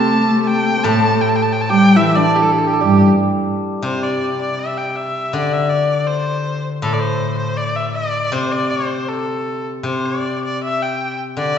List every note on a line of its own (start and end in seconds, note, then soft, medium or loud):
0.00 0.85 C3 medium
0.00 0.86 A3 medium
0.00 1.00 A3 medium
0.00 1.11 C4 medium
0.00 0.78 D4 medium
0.00 1.70 G4 medium
0.00 0.85 A4 medium
0.00 0.77 C5 medium
0.00 0.42 A5 medium
0.42 0.48 A5 medium
0.47 0.85 G5 loud
0.77 3.41 C5 medium
0.83 3.08 A2 medium
0.83 1.21 A3 medium
0.83 3.77 A4 medium
0.83 1.22 A5 loud
1.21 1.30 G5 medium
1.29 1.37 A5 medium
1.35 1.44 G5 medium
1.42 1.54 A5 medium
1.52 1.62 G5 medium
1.61 1.71 A5 medium
1.69 1.99 G3 medium
1.69 4.84 G4 medium
1.69 1.98 G5 loud
1.96 2.34 E3 medium
1.96 5.44 E4 medium
1.96 2.17 E5 medium
2.16 5.89 D4 medium
2.16 2.37 D5 medium
2.35 2.44 G4 medium
2.42 2.53 A4 medium
2.51 2.59 G4 medium
2.58 2.68 A4 medium
2.67 2.75 G4 medium
2.73 2.82 A4 medium
2.80 3.08 G2 medium
2.80 7.57 G3 medium
2.80 3.08 G4 medium
3.83 5.34 C3 soft
3.83 4.04 C5 medium
4.03 4.40 D5 medium
4.41 4.61 D5 medium
4.59 4.79 E5 medium
4.77 4.90 G5 medium
4.90 4.97 G5 medium
4.96 5.35 E5 medium
5.33 7.58 D3 soft
5.33 5.54 D5 medium
5.53 5.71 E5 medium
5.69 6.08 D5 medium
6.07 6.64 C5 medium
6.82 8.32 A2 medium
6.82 6.94 A4 medium
6.93 7.01 D5 medium
6.99 7.37 C5 medium
7.38 7.59 C5 medium
7.57 7.77 D5 medium
7.76 7.94 E5 medium
7.95 8.34 D5 medium
8.32 9.82 C3 soft
8.32 8.53 C5 medium
8.52 8.72 D5 medium
8.70 9.10 C5 medium
9.09 9.66 A4 medium
9.83 11.36 C3 soft
9.83 10.06 C5 medium
10.05 10.43 D5 medium
10.45 10.61 D5 medium
10.63 10.84 E5 medium
10.82 11.19 G5 medium
11.37 11.58 D3 soft
11.37 11.58 D5 medium